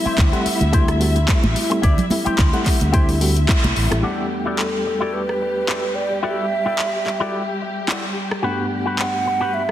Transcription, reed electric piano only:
0.00 0.29 G3 medium
0.00 0.29 A3 medium
0.00 0.30 C4 medium
0.00 0.30 E4 medium
0.32 0.70 G3 medium
0.32 0.70 A3 medium
0.32 0.70 C4 medium
0.32 0.70 F#5 medium
0.72 0.97 G3 medium
0.72 0.98 A3 medium
0.72 0.98 C4 medium
0.72 0.98 E4 loud
1.00 1.17 G3 medium
1.00 1.17 A3 medium
1.00 1.17 C4 medium
1.00 1.17 F#4 medium
1.28 1.67 G3 medium
1.28 1.67 A3 medium
1.28 1.68 C4 medium
1.28 1.68 E4 medium
1.71 1.85 G3 medium
1.71 1.85 A3 medium
1.71 1.85 C4 medium
1.71 1.85 E4 medium
2.11 2.50 G3 medium
2.11 2.50 A3 medium
2.11 2.50 C4 medium
2.11 2.50 E4 medium
2.53 2.90 G3 medium
2.53 2.90 A3 medium
2.53 2.91 C4 medium
2.53 2.91 F#5 loud
2.93 3.18 G3 medium
2.93 3.18 A3 medium
2.93 3.18 C4 medium
2.93 3.18 E4 loud
3.21 3.37 G3 medium
3.21 3.38 A3 medium
3.21 3.38 C4 medium
3.21 3.38 F#4 medium
3.48 3.88 G3 medium
3.48 3.88 A3 medium
3.48 3.88 C4 medium
3.48 3.88 E4 medium
3.90 4.02 G3 medium
3.90 4.02 A3 medium
3.90 4.02 C4 medium
3.90 4.02 E4 medium
4.03 8.41 E2 medium
4.03 8.41 G3 medium
4.03 8.41 A3 medium
4.03 8.41 B3 medium
4.03 8.41 D4 medium
4.03 8.41 F#5 medium
8.43 9.71 G2 medium
8.43 9.71 A3 medium
8.43 9.71 B3 medium
8.43 9.71 D4 medium
8.43 9.71 F#5 medium

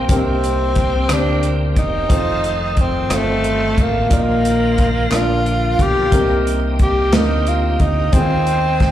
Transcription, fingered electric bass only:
0.10 1.06 C2 medium
1.09 1.78 D2 medium
1.77 2.07 E1 medium
2.10 3.07 F1 medium
3.10 3.73 G1 medium
3.78 4.09 A1 medium
4.11 5.08 A#1 medium
5.12 5.75 A#1 medium
5.79 6.10 B1 medium
6.12 7.12 C2 medium
7.12 7.76 D2 medium
7.80 8.11 D2 medium
8.13 8.91 D#2 medium

